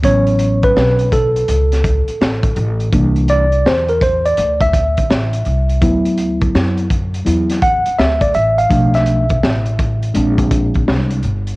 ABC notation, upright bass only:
X:1
M:4/4
L:1/16
Q:"Swing 16ths" 1/4=83
K:Am
V:1 name="Upright bass" clef=bass
A,,,4 B,,,4 ^C,,3 z A,,,2 A,,,2 | C,,4 E,,4 D,,3 z A,,,2 C,,2 | D,,4 ^F,,4 E,,3 z D,,2 A,,,2 | B,,,4 A,,,4 _B,,,4 C,,2 G,,,2 |]